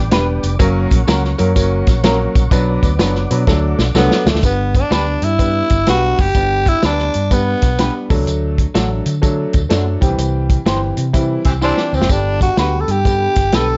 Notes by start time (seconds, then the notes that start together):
Already playing: B4 D5 G5 D6
0.11 E1 G3 B3 D4 G4 B4, snare, closed hi-hat, tambourine
0.43 F1, closed hi-hat, tambourine
0.59 F#1 F#3 A#3 C#4 A#4 C#5 F#5 C#6, kick, closed hi-hat, tambourine
0.91 A#1, kick, closed hi-hat, tambourine
1.07 C#2 F#3 A#3 C#4 F#4 A#4, snare, closed hi-hat, tambourine
1.25 snare
1.38 F#2 F#3 A#3 C#4 A#4, closed hi-hat, tambourine
1.56 F#1 F#3 A#3 C#4 A#4, kick, closed hi-hat, tambourine
1.87 A#1, kick, snare, closed hi-hat, tambourine
2.04 F#3 A#3 C#4 F#4 A#4, snare, closed hi-hat, tambourine
2.35 A#1, kick, closed hi-hat, tambourine
2.50 B1 F#3 B3 D4 B4 D5 D6, kick, closed hi-hat, tambourine
2.83 D2, kick, closed hi-hat, tambourine
2.99 F#1 F#3 B3 D4 F#4 B4, snare, closed hi-hat, tambourine
3.15 snare
3.30 B2 F#3 B3 D4 B4, closed hi-hat, tambourine
3.47 D2 F#3 A3 D4 A4 D5, kick, snare, tambourine
3.79 B1, snare, tambourine
3.95 C2 F#3 A3 B3 D4 F#4 A4, snare, tambourine
4.11 snare
4.26 D2 A3, snare, tambourine
4.34 D2, snare
4.43 G1 G3 B3 D4 B4, kick, closed hi-hat, tambourine
4.74 D4, kick, closed hi-hat, tambourine
4.90 D2 G3 B3 D4 G4 B4, snare, closed hi-hat, tambourine
5.22 G2 E4, closed hi-hat, tambourine
5.39 G3 B3 D4 B4, kick, closed hi-hat, tambourine
5.70 G1, kick, closed hi-hat, tambourine
5.86 B1 G3 B3 D4 F#4 G4 B4, snare, closed hi-hat, tambourine
6.18 F#1 G4, kick, open hi-hat, tambourine
6.35 G1 G3 B3 D4 B4, kick, closed hi-hat, tambourine
6.66 E4, kick, closed hi-hat, tambourine
6.82 D2 G3 B3 D4 G4 B4, snare, closed hi-hat, tambourine
6.99 snare
7.14 G2, closed hi-hat, tambourine
7.31 G3 B3 D4 B4, kick, closed hi-hat, tambourine
7.62 B1, kick, snare, closed hi-hat, tambourine
7.78 G3 B3 D4 G4 B4, snare, closed hi-hat, tambourine
8.10 D2 F#3 A3 D4 A4, kick, open hi-hat, tambourine
8.19 C#2
8.27 D2, closed hi-hat, tambourine
8.58 kick, closed hi-hat, tambourine
8.74 A1 F#3 A3 D4 F#4 A4, snare, closed hi-hat, tambourine
9.06 D3, closed hi-hat, tambourine
9.22 F#3 A3 D4 A4, kick, closed hi-hat, tambourine
9.53 D2, kick, closed hi-hat, tambourine
9.69 F#2 F#3 A3 D4 F#4 A4, snare, closed hi-hat, tambourine
10.01 C2 D#3 G3 C4 G4, kick, closed hi-hat, tambourine
10.07 E3
10.18 C2, closed hi-hat, tambourine
10.50 kick, closed hi-hat, tambourine
10.66 G1 E3 G3 C4 E4 G4 C5, snare, closed hi-hat, tambourine
10.97 C3, closed hi-hat, tambourine
11.13 E3 G3 C4 E4, kick, closed hi-hat, tambourine
11.45 C2 E3 C4 G4, kick, closed hi-hat, tambourine
11.61 E3 G3 C4 D4 E4 G4 C5, tambourine
11.77 snare
11.93 D2 C4, tambourine
12.00 F#1, snare
12.09 G1 D3 G3 B3 D4 G4, kick, closed hi-hat, tambourine
12.41 F#4, kick, closed hi-hat, tambourine
12.57 D2 D3 G3 B3 D4 F#4 G4 B4, snare, closed hi-hat, tambourine
12.81 A4
12.88 G2 G4, closed hi-hat, tambourine
13.05 D3 G3 B3 G4, kick, closed hi-hat, tambourine
13.36 G1, kick, snare, closed hi-hat, tambourine
13.52 B1 D3 G3 B3 D4 G4 A4 B4, snare, closed hi-hat, tambourine